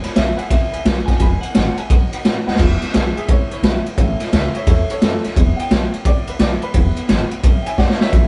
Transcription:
Already playing: G#5
0.02 E3 G#3 B3 G#4 B4 E5 B5, muted upright bass stroke, snare, ride
0.14 B1 E2 B2 E3 G#3 B3 G#4 B4 E5 G#5, snare, ride
0.37 G#3 B3 G#4 B4 E5 F#5 G#5, muted upright bass stroke, ride
0.41 E3
0.49 C#2 E3 G#3 B3 B4 E5, kick, snare, ride
0.53 G#4
0.72 D2 E3 G#3 B3 G#4 B4 E5 G#5, ride
0.85 B1 E2 B2 E3 G#3 B3 G#4 B4 E5 G#5, snare, ride
1.06 B4 E5 F#5 G#5, muted upright bass stroke, kick, snare, ride
1.10 E3 G#3 B3 G#4
1.18 E1 E2 B2 E3 G#3 B4 E5 G#5, kick, snare, ride
1.22 B3 G#4 B5
1.41 G#3 B3 G#4 B4 E5 F#5 G#5, muted upright bass stroke, ride
1.45 E3
1.55 G#1 E2 B2 E3 G#3 B3 G#4 B4 E5 F#5 G#5, snare, ride
1.77 E3 G#3 B3 G#4 B4 E5 G#5, muted upright bass stroke, ride
1.90 B1 F#3 B3 D#4 F#4 B4 D#5 F#5, kick, ride
2.13 B3 D#4 F#4 B4 D#5 F#5, muted upright bass stroke, ride
2.24 A2 B2 F#3 B3 D#4 F#4 B4 F#5, snare, ride
2.46 D#2 B3 D#4 F#4 B4 D#5 F#5, snare
2.55 E2 B2 E3, kick, snare, crash
2.60 E1 G#3 B3 E4
2.81 E3 G#3 B3 E4, muted upright bass stroke, snare, ride
2.91 E2 B2 E3 G#3 B3 E4 G#4 D#5, snare, ride
2.95 B1 E5
3.15 E3 G#3 B3 E4 G#4 E5, ride
3.28 C#2 E3 G#3 B3 E4 C#5, kick, ride
3.50 D2 E3 G#3 B3 E4 C#5, ride
3.62 B1 E2 B2 E3 G#3 B3 E4 B4, snare, ride
3.86 E3 G#3 B3 E4, muted upright bass stroke, ride
3.96 A1 A2 E3 A3 C#4 E4, kick, ride
4.20 A3 C#4 E4, muted upright bass stroke, snare, ride
4.30 C#2 A2 E3 A3 C#4 E4 C#5 D#5, snare, ride
4.35 E5
4.55 A3 C#4 E4 C#5 E5, muted upright bass stroke, ride
4.67 E2 E3 A3 C#4 E4 A4 C#5, kick, snare, ride
4.90 A3 C#4 E4 A4 C#5, muted upright bass stroke, ride
5.01 F#2 A2 E3 A3 C#4 E4 A4, snare, ride
5.24 D2 A3 C#4 E4, snare, ride
5.35 E1 E2 B2 E3 G#3 B3 E4, kick, ride
5.56 G#3 B3 E4 F#5, ride
5.61 E3 G5
5.71 B1 E2 B2 E3 G#3 B3 E4, snare, ride
5.94 E3 G#3 B3 E4, muted upright bass stroke, ride
6.05 C#2 E3 G#3 B3 E4 D5, kick, ride
6.27 D2 E3 G#3 B3 E4 B4, ride
6.39 B1 E2 B2 E3 G#3 B3 E4 D5, snare, ride
6.62 E3 G#3 B3 E4 B4, muted upright bass stroke, ride
6.73 E1 E2 B2 E3 G#3 B3 E4, kick, ride
6.96 E3 G#3 B3 E4, muted upright bass stroke, ride
7.09 G#1 E2 B2 E3 G#3 B3 E4, snare, ride
7.31 E3 G#3 B3 E4, muted upright bass stroke, ride
7.43 B1 E3 G#3 B3 E4, kick, ride
7.62 E5 G5, ride
7.67 E3 G#3 B3 E4 G#5, muted upright bass stroke
7.78 D2 E2 B2 E3 G#3 B3 E4 D5 F#5, kick, snare
7.89 snare
8.00 B1 E3 G#3 B3 E4 C#5 E5, snare
8.11 A1 A2 E3 A3 C#4 E4, kick, ride

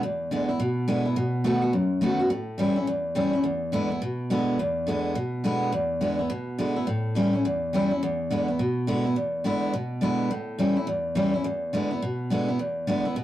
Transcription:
0.03 E2
0.31 D3 G#3 B3 E4
0.49 B3 E4
0.60 B2
0.88 D3 G#3 B3 E4
1.05 B3 E4
1.16 B2
1.44 D#3 A3 B3 F#4
1.62 B3 F#4
1.73 F#2
2.01 D#3 A3 B3 F#4
2.19 B3 F#4
2.30 A2
2.58 E3 G3 C#4 E4
2.76 C#4 E4
2.87 E2
3.15 E3 G3 C#4 E4
3.33 C#4 E4
3.44 E2
3.72 D3 G#3 B3 E4
3.90 B3 E4
4.02 B2
4.30 D3 G#3 B3 E4
4.59 E2
4.87 D3 G#3 B3 E4
5.15 B2
5.44 D3 G#3 B3 E4
5.72 E2
6.01 D3 G#3 B3 E4
6.19 B3 E4
6.30 B2
6.58 D3 G#3 B3 E4
6.76 B3 E4
6.87 A2
7.15 E3 G3 C#4 E4
7.33 C#4 E4
7.45 E2
7.73 E3 G3 C#4 E4
7.91 C#4 E4
8.03 E2
8.30 D3 G#3 B3 E4
8.48 B3 E4
8.59 B2
8.87 D3 G#3 B3 E4
9.05 B3 E4
9.16 E2
9.44 D3 G#3 B3 E4
9.73 B2
10.01 D3 G#3 B3 E4
10.31 A2
10.58 E3 G3 C#4 E4
10.76 C#4 E4
10.87 E2
11.15 E3 G3 C#4 E4
11.34 C#4 E4
11.44 E2
11.73 D3 G#3 B3 E4
11.91 B3 E4
12.02 B2
12.30 D3 G#3 B3 E4
12.48 B3 E4
12.59 E2
12.87 D3 G#3 B3 E4
13.05 B3 E4
13.16 B2

